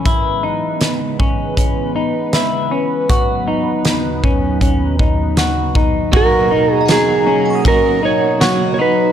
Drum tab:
RD |--------|--------|x-x-x-x-|
HH |x-x-x-x-|x-x-x-x-|--------|
TB |--------|--------|--x---x-|
SD |--o---o-|--o---o-|--o---o-|
BD |o--oo---|o--ooo-o|o---o---|